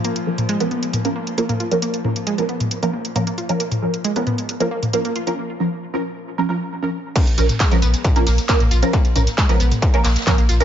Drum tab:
CC |--------------------------------|--------------------------------|--------------------------------|--------------------------------|
RD |--------------------------------|--------------------------------|--------------------------------|--------------------------------|
HH |x-x---x-x-x-x-x-x-x---x-x-x-x-x-|x-x---x-x-x-x-x-x-x---x-x-x-x-x-|x-x---x-x-x-x-x-x-x---x-x-x-x-x-|--------------------------------|
TB |--------------------------------|--------------------------------|--------------------------------|--------------------------------|
CP |--------------------------------|--------------------------------|--------------------------------|--------------------------------|
SD |--------------------------------|--------------------------------|--------------------------------|--------------------------------|
T2 |------o---------o---------o-----|----o---------o---------o-------|--o---------o---------o---------|--------------------------------|
BD |--------------------------------|--------------------------------|--------------------------------|--------------------------------|

CC |x-------------------------------|--------------------------------|
RD |x---x---x---x---x-----x-x---x---|x-x-x---x---x---x---xxxxx---x---|
HH |x-x-o-x-x-x-o-x-x-x-o-x-x-x-o-x-|x-x-o-x-x-x-o-x-x-x-o-x-x-x-o-x-|
TB |x-x-x-x-x-x-x-x-x-x-x-x-x-x-x-x-|x-x-x-x-x-x-x-x-x-x-x-x-x-x-x-x-|
CP |--------x---------------x-------|--------x-----------x---x-------|
SD |--------o-o---------o---o-------|------o-o-o---------oooo--------|
T2 |------o---------o---------o-----|----o---------o---------o-------|
BD |o-------o-------o-------o-------|o-------o-------o-------o-------|